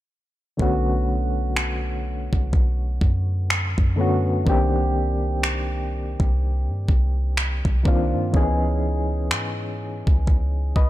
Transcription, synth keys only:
0.57 D3 A3 B3 C#4
0.62 F#4
3.96 D3 A3 B3 C#4
4.01 F#4
4.44 D#3 A#3 C4 D4
4.49 G4
7.83 D#3 A#3 C4 D4
7.88 F4
8.32 E3 B3 C#4 D#4
8.37 G#4
10.76 B4 D#5

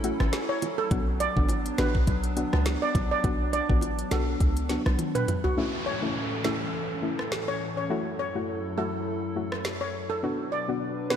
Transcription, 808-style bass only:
Already playing: A1
0.20 G#1
0.91 B1
1.37 G#1
1.78 A1
2.07 B1
2.53 C#2
2.95 B1
3.24 B1
3.70 A1
4.11 B1
4.40 C#2
4.86 B1

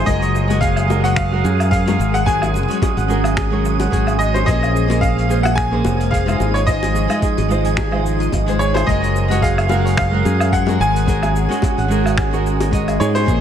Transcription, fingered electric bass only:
0.07 F#1
1.44 F#2
1.99 G#1
2.97 G#1
3.92 G#1
4.47 A#1
5.85 F1
6.40 G#1
7.38 G#1
8.32 G#1
8.88 F#1
10.25 F#2
10.80 G#1
11.78 G#1
13.00 G#2
13.28 A#1

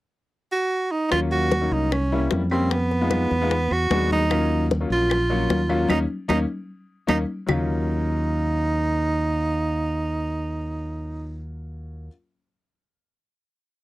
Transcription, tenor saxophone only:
0.52 F#4
0.91 D#4
1.11 F4
1.32 F#4
1.73 D#4
1.92 C#4
2.51 C4
2.71 B3
3.73 F#4
4.12 D#4
4.92 F4
5.90 D#4
6.29 D#4
7.09 D#4
7.49 D#4

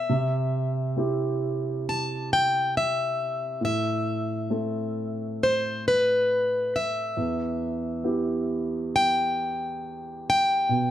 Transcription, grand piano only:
0.09 C3
0.97 C4 E4 G4
3.61 A2
4.50 A3 C4 A4
7.17 E2
8.04 B3 E4 G4
10.69 B2

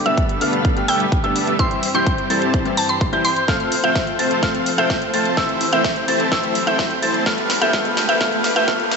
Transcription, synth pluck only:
0.06 E5
0.88 G5
1.59 C6
1.95 C6
2.77 A5
2.89 C6
3.25 C6
3.84 E5
4.78 E5
5.73 E5
6.67 E5
7.62 E5
8.09 E5
8.56 E5

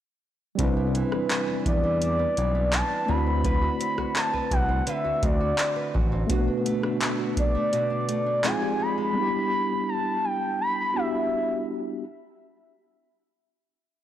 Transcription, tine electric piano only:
0.55 G3 C4
0.60 D4 E4
0.64 B4
3.06 A3 C4
3.10 E4 F#4
3.15 B4
6.27 A3 B3
6.31 D4 F#4
6.36 B4
8.43 G#3 C4 D#4 F4 G#4
9.13 G3 B3
9.17 D4 E4
9.22 G4
10.94 B3 D4 E4 F#4
10.98 G4

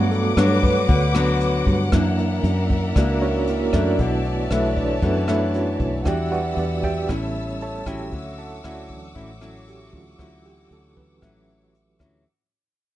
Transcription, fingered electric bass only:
Already playing: G2
0.37 G2
0.89 D2
1.66 G2
1.93 F#2
2.44 F#2
2.96 C#2
3.73 F#2
3.99 B1
4.51 B1
5.02 F#2
5.80 B1
6.06 E2
6.57 E2
7.09 A1
7.86 A1
8.12 D2
8.64 D2
9.16 A1
9.93 D2
10.19 D2
10.71 D2
11.22 A1
12.00 D2

